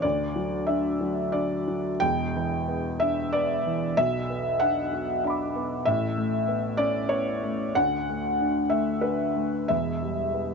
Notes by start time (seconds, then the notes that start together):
0.02 D2 D5
0.36 F#3
0.67 D4 E5
1.01 F#3
1.32 D4 D5
1.68 F#3
2.00 E1 E2 G5
2.36 E3
2.68 B3
3.00 D4 E5
3.33 B3 D5
3.67 E3
3.97 B1 B2 E5
4.30 B3
4.60 D4 F#5
4.93 F#4
5.24 D4 F#5 B5
5.30 D6
5.56 B3
5.85 A1 A2 E5
6.18 A3
6.48 B3
6.77 C#4 D5
7.09 B3 C#5
7.43 A3
7.75 D2 F#5
8.09 A3
8.41 D4
8.70 A3 E5
9.01 D4 B4
9.36 A3
9.68 E1 E2 E5
10.03 G3
10.34 B3